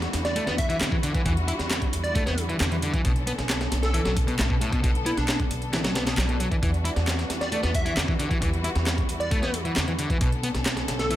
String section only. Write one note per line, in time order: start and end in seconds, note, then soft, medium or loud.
0.00 6.59 D3 medium
0.00 3.01 G3 medium
0.00 3.01 E4 medium
0.00 3.01 F#4 medium
3.05 6.59 B3 medium
3.05 4.82 C#4 medium
3.05 6.59 A4 medium
4.84 8.38 D4 medium
6.62 10.17 E3 medium
6.62 10.17 G3 medium
6.62 10.17 F#4 medium
8.42 10.19 E4 medium
10.21 11.16 D3 medium
10.21 11.16 B3 medium
10.21 11.16 C#4 medium
10.21 11.16 A4 medium